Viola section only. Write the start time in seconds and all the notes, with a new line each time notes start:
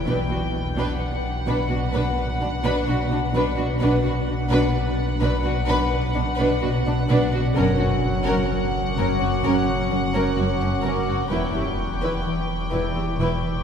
0.05 D4
0.29 D4
0.76 D4
1.47 D4
1.71 D4
1.94 D4
2.41 D4
2.64 D4
2.87 D4
3.10 D4
3.35 D4
3.58 D4
3.81 D4
4.04 D4
4.51 D4
5.21 D4
5.44 D4
5.68 D4
6.15 D4
6.39 D4
6.62 D4
6.86 D4
7.09 D4
7.33 D4
7.55 C#4
7.79 C#4
8.25 C#4
8.97 C#4
9.21 C#4
9.43 C#4
9.90 C#4
10.13 C#4
10.37 C#4
10.62 C#4
10.85 C#4
11.08 C#4
11.31 E4
11.55 E4
12.02 E4
12.71 E4
12.95 E4
13.19 E4